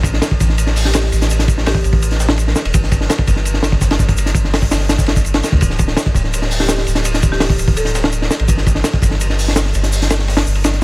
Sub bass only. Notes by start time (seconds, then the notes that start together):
Already playing: A1
0.40 A1
1.12 A1
1.84 A1
2.65 E1
2.74 G1
3.28 G1
3.99 G1
4.72 G1
5.52 D2
5.62 D1
6.15 D1
6.87 D1
7.59 D1
8.40 A1
8.48 G1
9.02 G1
9.75 G1
10.46 G1